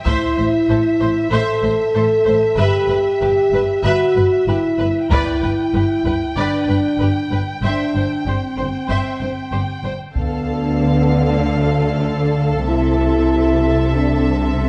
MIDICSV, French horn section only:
0, 0, Header, 1, 2, 480
1, 0, Start_track
1, 0, Tempo, 630252
1, 43, Time_signature, 4, 2, 24, 8
1, 11187, End_track
2, 0, Start_track
2, 0, Title_t, "French horn section"
2, 0, Program_c, 0, 60
2, 42, Note_on_c, 0, 64, 62
2, 972, Note_off_c, 0, 64, 0
2, 999, Note_on_c, 0, 69, 65
2, 1961, Note_off_c, 0, 69, 0
2, 1970, Note_on_c, 0, 67, 61
2, 2927, Note_off_c, 0, 67, 0
2, 2929, Note_on_c, 0, 66, 58
2, 3398, Note_off_c, 0, 66, 0
2, 3406, Note_on_c, 0, 64, 54
2, 3883, Note_off_c, 0, 64, 0
2, 3892, Note_on_c, 0, 64, 61
2, 4830, Note_off_c, 0, 64, 0
2, 4857, Note_on_c, 0, 62, 43
2, 5695, Note_off_c, 0, 62, 0
2, 5825, Note_on_c, 0, 62, 41
2, 6287, Note_off_c, 0, 62, 0
2, 6295, Note_on_c, 0, 60, 34
2, 7492, Note_off_c, 0, 60, 0
2, 7733, Note_on_c, 0, 59, 59
2, 8660, Note_off_c, 0, 59, 0
2, 8688, Note_on_c, 0, 57, 44
2, 9648, Note_off_c, 0, 57, 0
2, 9657, Note_on_c, 0, 64, 61
2, 10612, Note_off_c, 0, 64, 0
2, 10620, Note_on_c, 0, 62, 54
2, 11094, Note_off_c, 0, 62, 0
2, 11108, Note_on_c, 0, 60, 54
2, 11187, Note_off_c, 0, 60, 0
2, 11187, End_track
0, 0, End_of_file